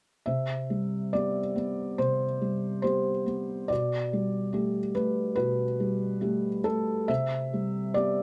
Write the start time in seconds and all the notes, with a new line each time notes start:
0.26 C3 E5
0.70 G3
1.13 B3 G4 D5
1.56 B3
1.98 C3 C5
2.41 G3
2.82 B3 G4 C5
3.26 B3
3.68 B2 D5
4.13 G3
4.53 A3 G4
4.95 A3 B4
5.35 B2 B4
5.80 G3
6.21 A3 G4
6.64 A3 A4
7.08 C3 E5
7.53 G3
7.94 B3 G4 D5